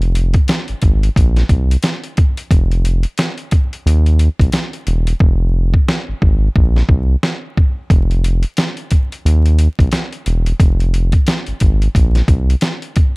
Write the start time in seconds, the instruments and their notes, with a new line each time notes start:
Already playing: analog synth bass F1
0.02 closed hi-hat
0.15 closed hi-hat
0.34 kick, closed hi-hat
0.48 snare, closed hi-hat
0.68 analog synth bass G#1, closed hi-hat
0.82 analog synth bass G#1, kick, closed hi-hat
1.03 closed hi-hat
1.16 analog synth bass A#1, kick, closed hi-hat
1.36 snare, closed hi-hat
1.49 analog synth bass C2, kick, closed hi-hat
1.71 closed hi-hat
1.83 snare, closed hi-hat
2.03 closed hi-hat
2.17 kick, closed hi-hat
2.37 closed hi-hat
2.51 analog synth bass F1, kick, closed hi-hat
2.71 closed hi-hat
2.85 closed hi-hat
3.03 closed hi-hat
3.18 snare, closed hi-hat
3.38 closed hi-hat
3.51 kick, closed hi-hat
3.73 closed hi-hat
3.86 analog synth bass D#2, closed hi-hat
4.06 closed hi-hat
4.19 closed hi-hat
4.39 analog synth bass C2, kick, closed hi-hat
4.52 snare, closed hi-hat
4.73 closed hi-hat
4.87 analog synth bass E1, closed hi-hat
5.07 closed hi-hat
5.20 analog synth bass F1, kick
5.74 kick
5.88 snare
6.08 analog synth bass G#1
6.22 analog synth bass G#1, kick
6.56 analog synth bass A#1, kick
6.76 snare
6.89 analog synth bass C2, kick
7.23 snare
7.57 kick
7.90 analog synth bass F1, kick, closed hi-hat
8.11 closed hi-hat
8.24 closed hi-hat
8.43 closed hi-hat
8.57 snare, closed hi-hat
8.77 closed hi-hat
8.91 kick, closed hi-hat
9.12 closed hi-hat
9.25 analog synth bass D#2, closed hi-hat
9.46 closed hi-hat
9.59 closed hi-hat
9.79 analog synth bass C2, kick, closed hi-hat
9.92 snare, closed hi-hat
10.13 closed hi-hat
10.26 analog synth bass E1, closed hi-hat
10.46 closed hi-hat
10.60 analog synth bass F1, kick, closed hi-hat
10.80 closed hi-hat
10.94 closed hi-hat
11.12 kick, closed hi-hat
11.27 snare, closed hi-hat
11.47 analog synth bass G#1, closed hi-hat
11.60 analog synth bass G#1, kick, closed hi-hat
11.82 closed hi-hat
11.95 analog synth bass A#1, kick, closed hi-hat
12.15 snare, closed hi-hat
12.28 analog synth bass C2, kick, closed hi-hat
12.50 closed hi-hat
12.61 snare, closed hi-hat
12.82 closed hi-hat
12.96 kick, closed hi-hat